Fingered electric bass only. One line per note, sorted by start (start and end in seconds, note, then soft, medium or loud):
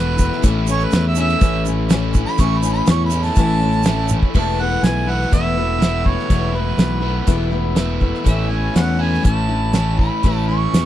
0.00 0.29 E1 medium
0.43 0.85 A1 medium
0.93 1.34 E2 medium
1.41 2.24 A1 medium
2.39 2.81 A1 medium
2.89 3.30 E2 medium
3.37 4.20 A1 medium
4.35 4.76 E1 medium
4.83 5.24 B1 medium
5.33 6.16 E1 medium
6.31 6.72 E1 medium
6.78 7.20 B1 medium
7.28 8.12 E1 medium
8.26 8.68 A1 medium
8.76 9.18 E2 medium
9.24 10.09 A1 medium
10.24 10.66 A1 medium
10.73 10.85 E2 medium